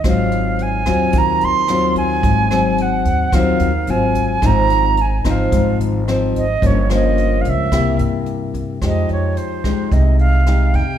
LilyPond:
<<
  \new Staff \with { instrumentName = "Flute" } { \time 4/4 \key aes \mixolydian \tempo 4 = 109 f''4 aes''4 bes''8 c'''4 aes''8~ | aes''4 ges''4 f''4 aes''4 | bes''4 aes''8 f''4 r4 ees''8 | des''8 ees''8.~ ees''32 f''32 e''4 r4. |
\key f \minor ees''8 des''8 c''4 ees''8 f''4 g''8 | }
  \new Staff \with { instrumentName = "Nylon-string guitar" } { \time 4/4 \key aes \mixolydian << { <ges c' f'>4. <ges c' f'>4. <ges c' f'>4~ | <ges c' f'>8 <ges c'>4. <ges c' f'>8 r8 <ges c' f'>4 | <f c' ees'>4 r8 <f c' ees'>4. <f c' ees'>8 r8 | <f bes des'>8 <f bes des'>4. <bes e' g'>2 |
\key f \minor <aes ees' g'>4. <aes ees' g'>4. <aes ees' g'>8 r8 | } \\ { aes,2 ees2 | aes,2 ees4 r4 | aes,2 aes,2 | g,2 c2 |
f2 c2 | } >> }
  \new Staff \with { instrumentName = "Upright bass" } { \clef bass \time 4/4 \key aes \mixolydian aes,,4. ees,8 ees,8 ees,4. | aes,,4. ees,8 ees,8 ees,8 aes,,4 | aes,,4. aes,,8 aes,,8 aes,,4. | g,,4. des,8 c,8 g,4. |
\key f \minor f,8 f,8 r4 c,4. f,8 | }
  \new DrumStaff \with { instrumentName = "Drums" } \drummode { \time 4/4 <hh bd ss>8 hh8 hh8 <hh bd ss>8 <hh bd>8 hh8 <hh ss>8 <hh bd>8 | <hh bd>8 <hh ss>8 hh8 <hh bd>8 <hh bd ss>8 hh8 hh8 <hh bd>8 | <hh bd ss>8 hh8 hh8 <hh bd ss>8 <hh bd>8 hh8 <hh ss>8 <hh bd>8 | <hh bd>8 <hh ss>8 hh8 <hh bd>8 <hh bd ss>8 hh8 hh8 <hh bd>8 |
<hh bd ss>8 hh8 hh8 <hh bd ss>8 <hh bd>8 hh8 <hh ss>8 <hh bd>8 | }
>>